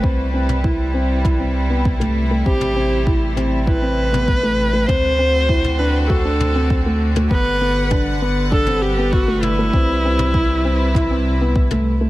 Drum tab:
T2 |---o----o----o--|-o----o----o----|o----o----o----o|----o----o----o-|
BD |o---o---o---o---|o---o---o---o---|o---o---o---o---|o---o---o---o---|

T2 |---o----o----o--|
BD |o---o---o---o---|